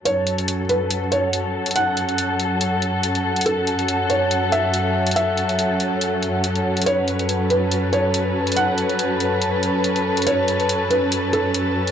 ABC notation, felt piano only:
X:1
M:4/4
L:1/8
Q:"Swing 16ths" 1/4=141
K:F#m
V:1 name="Felt piano"
c3 B z c3 | f8 | A3 c z e3 | e8 |
c3 B z c3 | f8 | c3 B z A3 |]